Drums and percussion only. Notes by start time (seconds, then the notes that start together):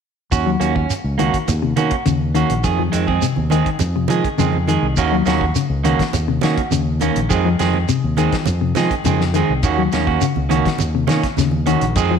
0.32 kick, closed hi-hat, shekere
0.61 closed hi-hat, shekere
0.75 kick, high conga
0.90 closed hi-hat, shekere
1.19 closed hi-hat, high conga, shekere
1.34 kick, closed hi-hat
1.48 closed hi-hat, high conga, shekere
1.77 closed hi-hat, high conga, shekere
1.91 kick, closed hi-hat
2.06 closed hi-hat, high conga, shekere
2.35 closed hi-hat, shekere
2.50 closed hi-hat
2.64 kick, closed hi-hat, shekere
2.93 closed hi-hat, shekere
3.07 kick, high conga
3.22 closed hi-hat, shekere
3.36 high conga
3.50 closed hi-hat, high conga, shekere
3.66 kick, closed hi-hat
3.79 closed hi-hat, high conga, shekere
4.08 closed hi-hat, high conga, shekere
4.24 kick, closed hi-hat
4.38 closed hi-hat, high conga, shekere
4.53 high conga
4.67 closed hi-hat, high conga, shekere
4.97 kick, closed hi-hat, shekere
5.26 snare, closed hi-hat, shekere
5.41 kick
5.55 closed hi-hat, shekere
5.85 closed hi-hat, high conga, shekere
5.99 kick, snare, closed hi-hat
6.13 closed hi-hat, high conga, shekere
6.41 snare, closed hi-hat, high conga, shekere
6.58 kick, closed hi-hat
6.71 closed hi-hat, high conga, shekere
7.00 closed hi-hat, high conga, shekere
7.16 closed hi-hat
7.31 kick, closed hi-hat, shekere
7.59 snare, closed hi-hat, shekere
7.73 high conga
7.89 closed hi-hat, shekere
8.17 closed hi-hat, high conga, shekere
8.32 kick, snare, closed hi-hat
8.45 closed hi-hat, high conga, shekere
8.75 snare, closed hi-hat, high conga, shekere
8.91 kick, closed hi-hat
9.04 closed hi-hat, high conga, shekere
9.21 snare
9.34 closed hi-hat, shekere
9.63 kick, closed hi-hat, shekere
9.92 snare, closed hi-hat, shekere
10.07 kick
10.21 closed hi-hat, shekere
10.36 high conga
10.50 closed hi-hat, high conga, shekere
10.65 kick, snare, closed hi-hat
10.78 closed hi-hat, high conga, shekere
11.08 snare, closed hi-hat, high conga, shekere
11.23 kick, snare, closed hi-hat
11.37 snare, closed hi-hat, high conga, shekere
11.51 high conga
11.66 closed hi-hat, high conga, shekere
11.81 closed hi-hat
11.96 kick, closed hi-hat, shekere